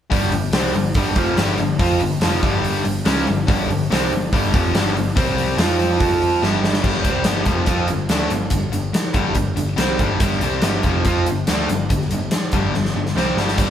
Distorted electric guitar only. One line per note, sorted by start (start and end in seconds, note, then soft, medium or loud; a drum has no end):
0.10 0.31 G2 medium
0.10 0.32 D3 medium
0.10 0.32 G3 medium
0.32 0.49 G2 medium
0.32 0.50 D3 medium
0.53 0.74 C3 medium
0.53 0.74 G3 medium
0.53 0.75 C4 medium
0.75 0.92 G2 medium
0.75 0.92 D3 medium
0.97 1.16 G2 medium
0.97 1.17 D3 loud
0.97 1.17 G3 medium
1.17 1.37 F2 loud
1.17 1.37 C3 medium
1.17 1.38 F3 loud
1.38 1.58 G2 medium
1.38 1.59 D3 medium
1.38 1.59 G3 loud
1.60 1.77 G2 medium
1.60 1.76 D3 medium
1.79 2.00 F3 medium
1.79 2.00 C4 medium
1.79 2.01 F4 loud
2.00 2.17 G2 medium
2.00 2.18 D3 medium
2.23 2.41 F2 medium
2.23 2.42 C3 medium
2.23 2.43 F3 loud
2.42 2.83 G2 medium
2.42 2.84 D3 medium
2.42 2.85 G3 medium
2.85 3.02 G2 medium
2.85 3.02 D3 medium
3.05 3.26 C#3 medium
3.05 3.26 G#3 medium
3.05 3.27 C#4 loud
3.27 3.44 G2 medium
3.27 3.44 D3 medium
3.47 3.68 G2 loud
3.47 3.68 D3 medium
3.47 3.68 G3 loud
3.70 3.86 G2 medium
3.70 3.86 D3 medium
3.90 4.11 C3 loud
3.90 4.11 G3 medium
3.90 4.12 C4 medium
4.12 4.28 G2 medium
4.12 4.29 D3 medium
4.33 4.53 G2 medium
4.33 4.53 D3 medium
4.33 4.53 G3 loud
4.54 4.74 F2 medium
4.54 4.74 C3 medium
4.54 4.75 F3 loud
4.75 4.94 G2 medium
4.75 4.94 D3 medium
4.75 4.95 G3 medium
4.95 5.12 G2 medium
4.95 5.12 D3 medium
5.16 5.57 C3 medium
5.16 5.58 G3 medium
5.16 5.57 C4 medium
5.58 6.42 F3 medium
5.58 6.42 C4 medium
5.58 6.42 F4 loud
6.42 6.81 G2 medium
6.42 6.82 D3 medium
6.42 6.83 G3 medium
6.82 7.04 G2 medium
6.82 7.03 D3 medium
6.82 7.02 G3 medium
7.04 7.25 C3 medium
7.04 7.25 G3 medium
7.04 7.25 C4 medium
7.25 7.44 G2 medium
7.25 7.45 D3 medium
7.25 7.46 G3 medium
7.45 7.66 F2 medium
7.45 7.66 C3 medium
7.45 7.65 F3 medium
7.66 7.88 F3 medium
7.66 7.88 C4 medium
7.66 7.88 F4 loud
7.89 8.06 G2 medium
7.89 8.06 D3 medium
8.10 8.29 D3 medium
8.10 8.31 A3 medium
8.10 8.31 D4 medium
8.30 8.47 G2 medium
8.30 8.48 D3 medium
8.50 8.68 G2 medium
8.50 8.68 D3 medium
8.72 8.89 G2 medium
8.72 8.90 D3 medium
8.93 muted distorted electric guitar stroke medium
9.13 9.35 G2 medium
9.13 9.35 D3 medium
9.13 9.36 G3 medium
9.36 9.53 G2 medium
9.36 9.53 D3 medium
9.56 9.74 G2 medium
9.56 9.74 D3 medium
9.76 9.98 C3 medium
9.76 9.98 G3 medium
9.76 9.99 C4 loud
10.00 10.19 G2 medium
10.00 10.20 D3 medium
10.00 10.20 G3 medium
10.21 10.41 G2 medium
10.21 10.41 D3 loud
10.21 10.40 G3 loud
10.42 10.62 C3 medium
10.42 10.62 G3 medium
10.42 10.62 C4 medium
10.63 10.83 G2 medium
10.63 10.83 D3 medium
10.63 10.83 G3 medium
10.85 11.05 F2 medium
10.85 11.05 C3 medium
10.85 11.05 F3 medium
11.08 11.27 F3 medium
11.08 11.27 C4 medium
11.08 11.27 F4 medium
11.28 11.44 G2 medium
11.28 11.44 D3 medium
11.48 11.68 D3 medium
11.48 11.68 A3 medium
11.48 11.69 D4 medium
11.69 11.85 G2 medium
11.69 11.86 D3 medium
11.89 12.06 G2 medium
11.89 12.06 D3 medium
12.12 12.28 G2 medium
12.12 12.28 D3 medium
12.34 muted distorted electric guitar stroke medium
12.53 12.73 G2 medium
12.53 12.73 D3 medium
12.53 12.73 G3 medium
12.75 12.91 G2 medium
12.75 12.91 D3 medium
12.96 13.12 G2 medium
12.96 13.12 D3 medium
13.17 13.37 C3 medium
13.17 13.37 G3 medium
13.17 13.37 C4 medium
13.38 13.57 G2 medium
13.38 13.57 D3 medium
13.38 13.58 G3 medium
13.58 13.70 G2 medium
13.58 13.70 D3 medium
13.58 13.70 G3 loud